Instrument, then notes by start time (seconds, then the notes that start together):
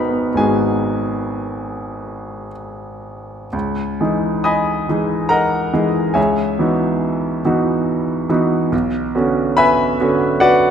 grand piano
Already playing: G#1 B3 D#4 F#4 G#4 A#4 B4 D#5 A#5 B5 D#6
0.09 B3
0.34 G#1 G#3 B3 D#4 F#4 G#5
0.39 G#4
3.53 C#2
4.00 E3 G#3 D#4 G#4
4.44 D#5 G#5 B5 D#6
4.89 E3 G#3 D#4 G#4
5.29 A#4 D#5 F#5 A#5
5.73 E3 G#3 D#4 G#4
6.14 C#2 G#4 C#5 E5 G#5
6.59 E3 B3 D#4 F#4
7.45 E3 B3 D#4 F#4
8.29 E3 B3 D#4 F#4
8.72 B1
9.15 D3 B3 C#4 F#4
9.57 B4 E5 G#5 B5
10.00 D3 B3 C#4 F#4
10.40 F#4 B4 D5 F#5